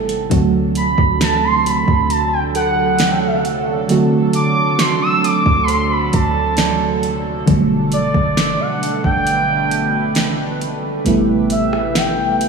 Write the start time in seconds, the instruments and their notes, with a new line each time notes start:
Already playing: 808-style bass A1, fm electric piano C3 G3 A3 B3 E4, analog synth pad C3 G3 B3 A4
0.09 closed hi-hat
0.30 808-style bass D2, fm electric piano D3 F#3 A3 C4 F#4, analog synth pad F#3 D4, kick, closed hi-hat
0.75 soft synth lead B5, closed hi-hat
0.98 808-style bass D2, kick
1.21 soft synth lead A5, snare, closed hi-hat
1.44 soft synth lead C6
1.66 soft synth lead B5, closed hi-hat
1.88 808-style bass D2, kick
2.10 soft synth lead A5, closed hi-hat
2.33 soft synth lead G5
2.55 synth bell A4, soft synth lead F#5, closed hi-hat
2.99 snare, closed hi-hat
3.09 soft synth lead G5
3.18 soft synth lead F#5
3.27 soft synth lead E5
3.36 soft synth lead F#5
3.45 closed hi-hat
3.88 fm electric piano D3 F#3 A3 C4 F#4, closed hi-hat
4.33 soft synth lead D6, closed hi-hat
4.79 soft synth lead C6, snare, closed hi-hat
5.01 soft synth lead E6
5.24 soft synth lead D6, closed hi-hat
5.46 808-style bass D2, kick
5.63 soft synth lead B5
5.68 synth bell C5, soft synth lead C6, closed hi-hat
5.91 soft synth lead B5
6.13 808-style bass D2, soft synth lead A5, kick, closed hi-hat
6.57 synth bell D5, snare, closed hi-hat
7.03 closed hi-hat
7.46 808-style bass G1, analog synth pad B2 A3 D4, fm electric piano B2 D3 F#3 G3 A3, kick, closed hi-hat
7.92 soft synth lead D5, closed hi-hat
8.14 808-style bass G1, kick
8.37 snare, closed hi-hat
8.60 soft synth lead F#5
8.83 closed hi-hat
9.04 808-style bass G1, soft synth lead G5, kick
9.27 analog synth pad B4, closed hi-hat
9.71 closed hi-hat
10.15 snare, closed hi-hat
10.61 closed hi-hat
11.05 808-style bass A1, fm electric piano C3 G3 A3 B3 E4, analog synth pad C3 A3 G4, closed hi-hat
11.50 soft synth lead E5, closed hi-hat
11.73 cross-stick
11.95 soft synth lead G5, snare, closed hi-hat
12.41 closed hi-hat